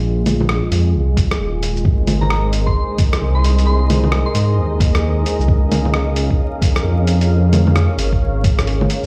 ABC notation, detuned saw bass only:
X:1
M:4/4
L:1/16
Q:"Swing 16ths" 1/4=132
K:Ab
V:1 name="Detuned saw bass" clef=bass
B,,,4- B,,, z F,,2 C,,2 C,,2 E,,,4 | A,,,8 z4 C,,4- | C,,4- C,, z A,,2 E,,6 z C,, | D,,8 z4 F,,4- |
F,,4- F,, z A,,,2 A,,,6 z2 |]